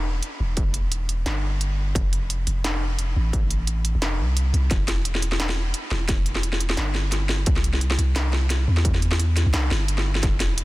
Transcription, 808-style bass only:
0.00 0.22 E1 loud
0.40 1.25 E1 loud
1.26 1.94 G1 medium
1.95 2.46 F1 loud
2.47 3.15 F1 medium
3.16 3.93 A1 medium
3.95 4.21 F1 loud
4.20 4.53 C2 medium
4.54 4.70 C2 medium
4.71 5.73 E1 loud
5.91 6.77 E1 loud
6.78 7.46 G1 medium
7.47 7.98 C2 loud
7.98 8.67 C2 medium
8.68 9.45 E2 medium
9.46 9.53 C2 medium
9.54 9.70 C2 medium
9.71 10.22 G1 medium
10.23 10.64 E1 loud

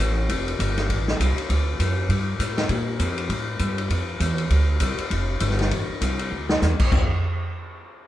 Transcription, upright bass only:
0.00 0.28 A1 loud
0.29 0.58 F1 loud
0.59 0.88 G1 loud
0.89 1.18 A1 loud
1.20 1.36 C2 loud
1.38 muted upright bass stroke soft
1.49 1.79 D2 medium
1.79 2.08 F#2 loud
2.09 2.39 G2 medium
2.39 2.68 A2 loud
2.69 2.99 A#2 medium
2.99 3.28 F2 loud
3.29 3.59 A2 medium
3.60 3.89 G2 loud
3.90 4.19 F2 medium
4.20 4.49 E2 loud
4.50 4.80 D2 medium
4.80 4.97 C2 loud
4.98 muted upright bass stroke soft
5.10 5.40 F1 medium
5.41 5.70 G1 loud
5.71 5.88 A1 medium
5.89 muted upright bass stroke soft
6.01 6.30 C2 loud
6.31 6.60 D2 medium
6.62 6.78 E2 loud
6.92 7.08 D2 loud

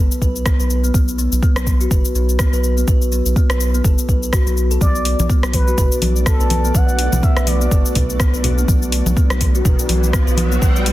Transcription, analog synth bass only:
0.22 0.55 B1 medium
0.60 0.91 B1 medium
0.94 1.28 B1 medium
1.32 1.40 B1 loud
1.56 1.87 B1 medium
1.91 2.02 F#1 medium
2.15 2.49 B1 loud
2.53 2.84 B1 medium
2.88 3.21 B1 loud
3.25 3.34 B1 loud
3.50 3.81 B1 medium
3.84 3.95 F#1 medium
4.09 4.42 B1 loud
4.46 4.78 B1 medium
4.81 5.15 B1 loud
5.19 5.27 B1 loud
5.43 5.75 B1 medium
5.78 5.89 F#1 medium
6.02 6.36 B1 loud
6.40 6.71 B1 medium
6.75 7.08 B1 loud
7.13 7.21 B1 loud
7.37 7.68 B1 medium
7.71 7.83 F#1 medium
7.96 8.29 B1 loud
8.33 8.65 B1 medium
8.68 9.02 B1 loud
9.06 9.14 B1 loud
9.30 9.62 B1 medium
9.65 9.76 F#1 medium
9.89 10.23 B1 loud
10.27 10.58 B1 medium
10.62 10.93 B1 loud

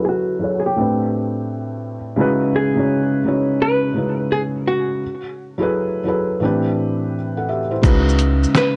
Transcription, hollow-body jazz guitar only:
0.05 0.59 F#4 medium
0.05 0.08 G#4 medium
0.60 0.66 G#4 medium
0.66 1.80 G4 medium
2.56 3.57 G#4 medium
3.62 4.34 B4 medium
4.32 4.41 G#4 medium
4.68 5.69 F#4 medium
8.57 8.76 B4 medium

